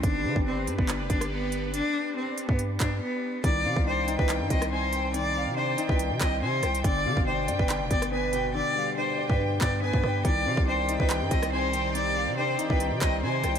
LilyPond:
<<
  \new Staff \with { instrumentName = "Violin section" } { \time 4/4 \key c \minor \tempo 4 = 141 r1 | r1 | r8 f''8 g''2 aes''8 g''8 | r8 f''8 g''2 aes''8 g''8 |
r8 f''8 g''2 aes''8 g''8 | r8 f''8 g''2 aes''8 g''8 | r8 f''8 g''2 aes''8 g''8 | r8 f''8 g''2 aes''8 g''8 | }
  \new Staff \with { instrumentName = "Cello" } { \time 4/4 \key c \minor d'4 c'8. b16 r8 d'8 b4 | d'4 c'8. b16 r8 d'8 b4 | d''4 c''8. b'16 r8 ees''8 c''4 | d''4 c''8. b'16 r8 ees''8 c''4 |
d''4 c''8. b'16 r8 d''8 b'4 | d''4 c''8. b'16 r8 d''8 b'4 | d''4 c''8. b'16 r8 ees''8 c''4 | d''4 c''8. b'16 r8 ees''8 c''4 | }
  \new Staff \with { instrumentName = "Analog synth pad" } { \time 4/4 \key c \minor <d' g' b' d''>1~ | <d' g' b' d''>1 | r1 | r1 |
r1 | r1 | <ees c' g' d''>1~ | <ees c' g' d''>1 | }
  \new Staff \with { instrumentName = "Grand piano" } { \time 4/4 \key c \minor r1 | r1 | ees8 c'8 d'8 ees'8 ees8 c'8 c'8 c'8 | ees8 c'8 d'8 ees'8 ees8 c'8 c'8 c'8 |
d8 b,8 d'8 d''8 d8 b8 b8 b,8 | d8 g8 d'8 d''8 d8 b8 b8 b8 | ees8 c'8 d'8 ees'8 ees8 c'8 c'8 c'8 | ees8 c'8 d'8 ees'8 ees8 c'8 c'8 c'8 | }
  \new Staff \with { instrumentName = "808-style bass" } { \clef bass \time 4/4 \key c \minor g,,8 d16 g,,8. g,16 g,,8 f,,16 g,,4.~ | g,,16 r4. g,8. g,8 r4 | c,8 c16 c,4 c,8 g,16 c,4.~ | c,8. c8. r16 c,8 c16 c,8 c8 c,8 |
g,,8 d16 g,,8. g,16 g,,8 f,,16 g,,4.~ | g,,16 r4. g,8. g,8. g,16 g,8 | c,8 c16 c,4 c,8 g,16 c,4.~ | c,8. c8. r16 c,8 c16 c,8 c8 c,8 | }
  \new DrumStaff \with { instrumentName = "Drums" } \drummode { \time 4/4 <hh bd>8. bd16 r8 hh16 bd16 <hc hh>8 <hh bd>16 <hh ss>16 r8 hh8 | hh4 r8 hh16 bd16 hh8 <hc hh bd>8 r4 | <hh bd>8. bd16 r8 hh16 bd16 <hc hh>8 <hh bd>16 <hh ss>16 r8 hh8 | hh4 r8 hh16 bd16 hh8 <hc hh bd>8 r8 <hh ss>16 hh16 |
<hh bd>8. bd16 r8 hh16 bd16 <hc hh>8 <hh bd>16 <hh ss>16 r8 hh8 | r4 r8. bd16 r8 <hc bd>8 r16 bd16 ss8 | <hh bd>8. bd16 r8 hh16 bd16 <hc hh>8 <hh bd>16 <hh ss>16 r8 hh8 | hh4 r8 hh16 bd16 hh8 <hc hh bd>8 r8 <hh ss>16 hh16 | }
>>